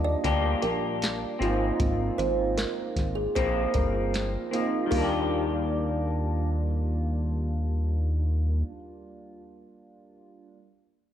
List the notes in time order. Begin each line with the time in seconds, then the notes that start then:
Already playing: D#2 D#3 G3 A#3 D4 F4 G4
0.04 D5
0.24 D2 A#3 D4 G4, kick, closed hi-hat
0.62 A#1 A#3 D4 G4 A#4, closed hi-hat
1.02 snare, closed hi-hat
1.39 G#1 F3 A#3 C4 D#4 F4, closed hi-hat
1.44 G#2
1.80 G#1, kick, closed hi-hat
2.18 G#1 C5, closed hi-hat
2.58 A#4, snare, closed hi-hat
2.96 G#1, kick, snare, closed hi-hat
3.15 G#4
3.35 A#1 F3 A#3 C4 C5, kick, closed hi-hat
3.74 G1 A#4, kick, closed hi-hat
4.14 snare, closed hi-hat
4.51 F3 A#3 C4 D#4 F4, closed hi-hat
4.86 D#3 G3
4.90 D#2 A#3 D4 A#4, kick, open hi-hat
4.97 D4 F4
5.03 G4